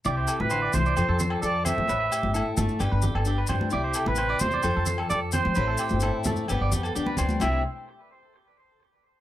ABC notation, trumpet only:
X:1
M:4/4
L:1/16
Q:1/4=131
K:C
V:1 name="Trumpet"
G3 B3 c4 z2 d2 e2- | e6 z8 z2 | G3 B3 c4 z2 d2 c2- | c6 z8 z2 |
e2 z12 z2 |]